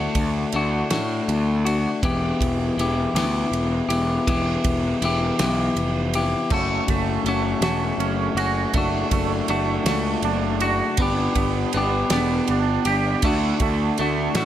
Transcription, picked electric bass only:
0.15 D2
0.54 D2
0.91 A2
1.28 D2
2.03 E1
2.41 E1
2.77 E1
3.14 D2
3.52 E1
3.89 E1
4.28 E1
4.65 E1
5.02 E1
5.40 B1
5.76 F1
6.51 F#1
6.88 F#1
7.24 F#1
7.61 E1
7.98 F#1
8.35 F#1
8.74 F#1
9.11 F#1
9.49 F#1
9.85 C#2
10.23 F#1
10.98 G1
11.35 G1
11.74 G1
12.11 E1
12.49 G1
12.86 G1
13.23 D2
13.60 D2
13.99 D2
14.35 A2

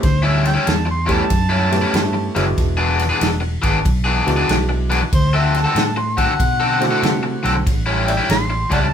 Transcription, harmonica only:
0.03 C5
0.24 E5
0.47 G5
0.68 A5
0.91 C6
1.12 A5
5.15 C5
5.35 E5
5.56 A5
5.76 A5
5.97 C6
6.19 F#5
8.08 D5 E5 G5
8.30 C6
8.73 D5 F#5 A5

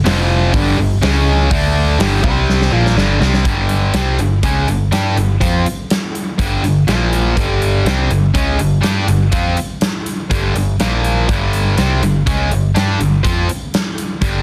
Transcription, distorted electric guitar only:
0.05 F2 C3 F3
0.53 G2 D3 G3
0.78 G2 D3
1.02 C#3 G#3 C#4
1.51 D3 A3 D4
1.99 G2 D3 G3
2.23 C3 G3 C4
2.72 A#2 F3 A#3
2.96 G2 D3 G3
3.20 C3 G3 C4
3.45 G2 D3 G3
3.94 C3 G3 C4
4.20 G2 D3
4.44 C#3 G#3 C#4
4.68 G2 D3
4.92 G3 D4 G4
5.16 G2 D3
5.40 F3 C4 F4
6.39 G2 D3 G3
6.64 G2 D3
6.88 A#2 F3 A#3
7.36 G2 D3 G3
7.85 C3 G3 C4
8.10 G2 D3
8.34 C#3 G#3 C#4
8.59 G2 D3
8.82 G3 D4 G4
9.07 G2 D3
9.32 F3 C4 F4
10.30 G2 D3 G3
10.55 G2 D3
10.80 A#2 F3 A#3
11.29 G2 D3 G3
11.77 C3 G3 C4
12.02 G2 D3
12.26 C#3 G#3 C#4
12.50 G2 D3
12.75 G3 D4 G4
12.99 G2 D3
13.23 F3 C4 F4
14.21 G2 D3 G3

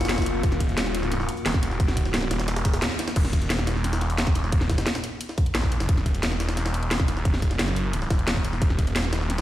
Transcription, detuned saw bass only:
Already playing: F1
0.43 D#1
1.46 D#1
2.31 D#1
2.65 D#1
3.16 D#1
3.67 D#1
4.53 D#1
5.55 A#1
5.89 D#1
6.40 D#1
7.25 D#1
7.59 F#1
8.11 D#1
8.62 D#1
9.13 D#1

